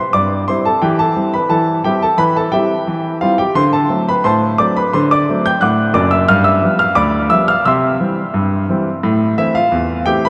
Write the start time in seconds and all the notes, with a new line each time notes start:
Already playing: C5 C6
0.13 G2 D5 D6
0.48 G3 C4 E4 C5 C6
0.65 A4 A5
0.82 E3 G4 G5
0.99 A4 A5
1.15 G3 C4 E4
1.34 B4 B5
1.50 E3 A4 A5
1.84 G3 C4 E4 G4 G5
2.02 A4 A5
2.18 E3 B4 B5
2.36 A4 A5
2.52 G3 C4 E4 G4 E5 G5
2.87 E3
3.21 G3 C4 E4 F4 F5
3.38 G4 G5
3.55 D3 C5 C6
3.73 A4 A5
3.89 F#3 A3 C4
4.09 B4 B5
4.24 A2 C5 A5 C6
4.58 F#3 A3 C4 D5 D6
4.76 B4 B5
4.93 D3 C5 C6
5.11 D5 D6
5.29 F#3 A3 C4
5.46 G5 G6
5.61 A2 F#5 D6 F#6
5.94 F#1 F#2 D5 D6
6.11 E5 E6
6.28 G2 F5 F6
6.44 E5 E6
6.62 F3 G3 B3
6.79 F5 F6
6.95 D2 D5 B5 D6
7.30 F3 G3 B3 E5 E6
7.48 F5 F6
7.65 C3 E5 C6 E6
8.00 E3 G3 C4
8.34 G2
8.69 E3 G3 C4
9.03 A2
9.38 E3 A3 C4 E4 E5
9.55 F4 F5
9.72 E2
10.05 E3 A3 C4 G4 G5
10.25 B5